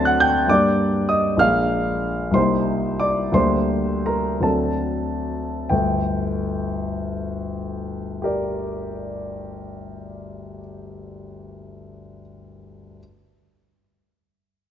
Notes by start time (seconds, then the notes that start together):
Already playing: D2 F#3 C4 D4 A5 A6
0.05 F#5 F#6
0.20 G5 G6
0.47 G2 G3 A#3 D4 D5 D6
1.09 D#5 D#6
1.37 A#1 G#3 A#3 D4 F5 F6
2.31 C2 G3 A#3 D#4 C6
2.35 C5
3.00 D5 D6
3.32 D2 G3 A#3 D4 C5 C6
4.06 A#4 A#5
4.40 D2 F#3 C4 D4 A4 A5
5.69 G1 D2 G5
8.22 G4 A#4 D5